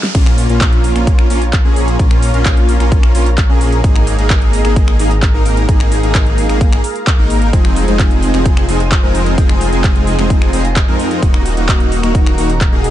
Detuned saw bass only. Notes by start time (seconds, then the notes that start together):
0.15 A#1
0.49 A#1
0.96 A#1
1.30 A#1
1.65 A#1
1.99 A#1
2.34 A#1
2.80 A#1
3.15 A#1
3.49 A#1
3.84 G#1
4.19 G#1
4.65 G#1
4.99 G#1
5.34 G#1
5.69 G#1
6.03 G#1
6.49 G#1
7.19 G#1
7.53 F1
7.88 F1
8.34 F1
8.69 F1
9.03 F1
9.38 F1
9.72 F1
10.19 F1
10.53 F1
10.88 F2
11.22 D#1
11.57 D#1
12.03 D#1
12.38 D#1
12.72 D#1